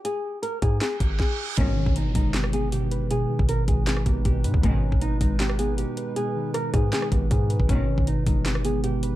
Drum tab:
HH |x---x-x-x-x-----|x---x-x-x-x-x-x-|x---x-x-x-x-x-x-|x---x-x-x-x-x-x-|
CP |--------x-------|--------x-------|--------x-------|--------x-------|
SD |--------o---o---|--------or------|--------or------|--------or------|
BD |------o---o-o---|o--o--o---------|---o--o---o-o--o|o--o--o---------|

HH |x---x-x-x-x-x-x-|x---x-x-x-x-x-x-|
CP |--------x-------|--------x-------|
SD |----r---or------|--------or------|
BD |------o---o-o--o|o--o--o---------|